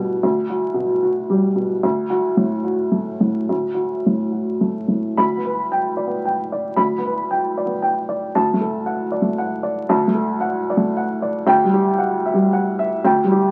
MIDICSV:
0, 0, Header, 1, 2, 480
1, 0, Start_track
1, 0, Key_signature, 2, "major"
1, 0, Tempo, 532387
1, 209, Time_signature, 3, 2, 24, 8
1, 1653, Tempo, 557621
1, 4533, Tempo, 535714
1, 5493, Tempo, 522648
1, 12162, End_track
2, 0, Start_track
2, 0, Title_t, "Upright piano"
2, 0, Program_c, 0, 0
2, 0, Control_c, 0, 64, 127
2, 0, Note_on_c, 0, 38, 49
2, 0, Note_on_c, 0, 47, 42
2, 0, Note_on_c, 0, 55, 39
2, 0, Note_on_c, 0, 66, 39
2, 105, Note_off_c, 0, 55, 0
2, 169, Note_off_c, 0, 38, 0
2, 210, Note_on_c, 0, 38, 51
2, 225, Control_c, 0, 64, 0
2, 231, Note_off_c, 0, 66, 0
2, 346, Note_off_c, 0, 47, 0
2, 383, Control_c, 0, 64, 127
2, 447, Note_on_c, 0, 66, 41
2, 668, Note_on_c, 0, 47, 41
2, 832, Note_off_c, 0, 66, 0
2, 925, Note_on_c, 0, 66, 36
2, 1062, Note_off_c, 0, 47, 0
2, 1170, Note_on_c, 0, 55, 43
2, 1310, Note_off_c, 0, 66, 0
2, 1404, Note_on_c, 0, 47, 36
2, 1555, Note_off_c, 0, 55, 0
2, 1617, Note_off_c, 0, 38, 0
2, 1650, Note_off_c, 0, 47, 0
2, 1653, Note_on_c, 0, 38, 48
2, 1670, Control_c, 0, 64, 0
2, 1835, Control_c, 0, 64, 127
2, 1883, Note_on_c, 0, 66, 50
2, 2115, Note_on_c, 0, 45, 39
2, 2262, Note_off_c, 0, 66, 0
2, 2349, Note_on_c, 0, 66, 34
2, 2498, Note_off_c, 0, 45, 0
2, 2584, Note_on_c, 0, 57, 34
2, 2740, Note_off_c, 0, 66, 0
2, 2833, Note_on_c, 0, 45, 35
2, 2982, Note_off_c, 0, 57, 0
2, 3054, Note_off_c, 0, 38, 0
2, 3081, Note_on_c, 0, 38, 39
2, 3104, Control_c, 0, 64, 0
2, 3230, Note_off_c, 0, 45, 0
2, 3242, Control_c, 0, 64, 127
2, 3297, Note_on_c, 0, 66, 33
2, 3572, Note_on_c, 0, 45, 33
2, 3702, Note_off_c, 0, 66, 0
2, 3796, Note_on_c, 0, 66, 27
2, 3960, Note_off_c, 0, 45, 0
2, 4041, Note_on_c, 0, 57, 32
2, 4191, Note_off_c, 0, 66, 0
2, 4276, Note_on_c, 0, 45, 29
2, 4432, Note_off_c, 0, 57, 0
2, 4495, Note_off_c, 0, 38, 0
2, 4522, Note_off_c, 0, 45, 0
2, 4529, Note_on_c, 0, 83, 60
2, 4534, Note_on_c, 0, 38, 44
2, 4547, Control_c, 0, 64, 0
2, 4703, Note_on_c, 0, 59, 30
2, 4710, Control_c, 0, 64, 127
2, 4776, Note_on_c, 0, 71, 35
2, 4916, Note_off_c, 0, 83, 0
2, 4955, Note_off_c, 0, 59, 0
2, 5016, Note_on_c, 0, 79, 41
2, 5160, Note_off_c, 0, 71, 0
2, 5241, Note_on_c, 0, 74, 36
2, 5330, Note_on_c, 0, 59, 30
2, 5398, Note_off_c, 0, 79, 0
2, 5497, Note_on_c, 0, 79, 34
2, 5588, Note_off_c, 0, 59, 0
2, 5631, Note_off_c, 0, 74, 0
2, 5743, Note_on_c, 0, 74, 36
2, 5883, Note_off_c, 0, 79, 0
2, 5943, Note_off_c, 0, 38, 0
2, 5965, Note_on_c, 0, 83, 45
2, 5971, Note_on_c, 0, 38, 42
2, 5996, Control_c, 0, 64, 0
2, 6130, Note_off_c, 0, 74, 0
2, 6132, Control_c, 0, 64, 127
2, 6164, Note_on_c, 0, 59, 35
2, 6231, Note_on_c, 0, 71, 34
2, 6364, Note_off_c, 0, 83, 0
2, 6414, Note_off_c, 0, 59, 0
2, 6464, Note_on_c, 0, 79, 41
2, 6616, Note_off_c, 0, 71, 0
2, 6709, Note_on_c, 0, 74, 35
2, 6788, Note_on_c, 0, 59, 34
2, 6850, Note_off_c, 0, 79, 0
2, 6937, Note_on_c, 0, 79, 41
2, 7044, Note_off_c, 0, 59, 0
2, 7092, Note_off_c, 0, 74, 0
2, 7181, Note_on_c, 0, 74, 37
2, 7325, Note_off_c, 0, 79, 0
2, 7385, Note_off_c, 0, 38, 0
2, 7423, Note_off_c, 0, 74, 0
2, 7424, Note_on_c, 0, 81, 57
2, 7426, Note_on_c, 0, 38, 48
2, 7444, Control_c, 0, 64, 0
2, 7586, Control_c, 0, 64, 127
2, 7591, Note_on_c, 0, 57, 36
2, 7663, Note_on_c, 0, 69, 42
2, 7807, Note_off_c, 0, 81, 0
2, 7843, Note_off_c, 0, 57, 0
2, 7890, Note_on_c, 0, 78, 42
2, 8046, Note_off_c, 0, 69, 0
2, 8126, Note_on_c, 0, 74, 37
2, 8218, Note_on_c, 0, 57, 36
2, 8279, Note_off_c, 0, 78, 0
2, 8370, Note_on_c, 0, 78, 43
2, 8474, Note_off_c, 0, 57, 0
2, 8516, Note_off_c, 0, 74, 0
2, 8599, Note_on_c, 0, 74, 40
2, 8754, Note_off_c, 0, 78, 0
2, 8818, Note_off_c, 0, 38, 0
2, 8837, Note_on_c, 0, 81, 46
2, 8841, Note_on_c, 0, 38, 58
2, 8869, Control_c, 0, 64, 0
2, 8988, Note_off_c, 0, 74, 0
2, 8992, Control_c, 0, 64, 127
2, 9005, Note_on_c, 0, 57, 36
2, 9071, Note_on_c, 0, 69, 42
2, 9228, Note_off_c, 0, 81, 0
2, 9265, Note_off_c, 0, 57, 0
2, 9310, Note_on_c, 0, 78, 49
2, 9466, Note_off_c, 0, 69, 0
2, 9579, Note_on_c, 0, 74, 40
2, 9643, Note_on_c, 0, 57, 42
2, 9704, Note_off_c, 0, 78, 0
2, 9825, Note_on_c, 0, 78, 47
2, 9903, Note_off_c, 0, 57, 0
2, 9959, Note_off_c, 0, 74, 0
2, 10060, Note_on_c, 0, 74, 47
2, 10201, Note_off_c, 0, 78, 0
2, 10246, Note_off_c, 0, 38, 0
2, 10282, Note_on_c, 0, 38, 60
2, 10290, Note_on_c, 0, 79, 67
2, 10295, Note_off_c, 0, 74, 0
2, 10308, Control_c, 0, 64, 0
2, 10436, Control_c, 0, 64, 127
2, 10443, Note_on_c, 0, 55, 43
2, 10532, Note_on_c, 0, 67, 47
2, 10674, Note_off_c, 0, 79, 0
2, 10703, Note_off_c, 0, 55, 0
2, 10758, Note_on_c, 0, 78, 51
2, 10915, Note_off_c, 0, 67, 0
2, 11009, Note_on_c, 0, 76, 43
2, 11083, Note_on_c, 0, 55, 45
2, 11147, Note_off_c, 0, 78, 0
2, 11262, Note_on_c, 0, 78, 51
2, 11341, Note_off_c, 0, 55, 0
2, 11391, Note_off_c, 0, 76, 0
2, 11499, Note_on_c, 0, 76, 53
2, 11638, Note_off_c, 0, 78, 0
2, 11687, Note_off_c, 0, 38, 0
2, 11733, Note_on_c, 0, 38, 55
2, 11735, Note_on_c, 0, 79, 55
2, 11747, Control_c, 0, 64, 0
2, 11879, Note_off_c, 0, 76, 0
2, 11884, Control_c, 0, 64, 127
2, 11912, Note_on_c, 0, 55, 42
2, 11981, Note_on_c, 0, 67, 49
2, 12119, Note_off_c, 0, 79, 0
2, 12158, Note_off_c, 0, 55, 0
2, 12162, Note_off_c, 0, 38, 0
2, 12162, Note_off_c, 0, 67, 0
2, 12162, End_track
0, 0, End_of_file